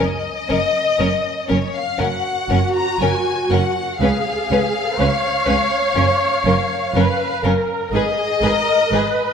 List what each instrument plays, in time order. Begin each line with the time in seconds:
0.01 double bass section F#1, cello section F#2, violin section D#5
0.49 double bass section F#1, cello section F#2, violin section C#4 A#4
0.99 double bass section F#1, cello section F#2, violin section C#4 A#4
1.48 double bass section F#1, cello section F#2, violin section C#4 A#4 C#5
1.74 violin section F5
1.98 double bass section F#1, cello section F#2, violin section C#4 A#4 F#5, viola section F#4
2.50 double bass section F#1, cello section F#2, violin section C#4 A#4
2.75 violin section A#5
3.01 double bass section F#1, cello section F#2, violin section C#4 A#4 G#5
3.51 double bass section F#1, cello section F#2, violin section C#4 A#4 F#5
4.00 cello section C#2, double bass section C#2, violin section C#4 B4 F5, viola section G#4
4.50 double bass section C#2, cello section C#2, violin section C#4 B4
4.98 double bass section C#2, cello section C#2, violin section C#4 B4, viola section C#5
5.46 double bass section C#2, cello section C#2, violin section C#4 B4
5.95 double bass section F#1, cello section F#2, violin section C#4 A#4
6.45 double bass section F#1, cello section F#2, violin section C#4 A#4
6.95 double bass section F#1, cello section F#2, violin section C#4 A#4, viola section B4
7.44 double bass section F#1, cello section F#2, violin section C#4 A#4, viola section A#4
7.92 double bass section G#1, cello section G#2, viola section G#4, violin section G#4 B4 D#5
8.42 double bass section G#1, cello section G#2, violin section G#4 B4, viola section A#4
8.92 double bass section G#1, cello section G#2, violin section G#4 B4, viola section B4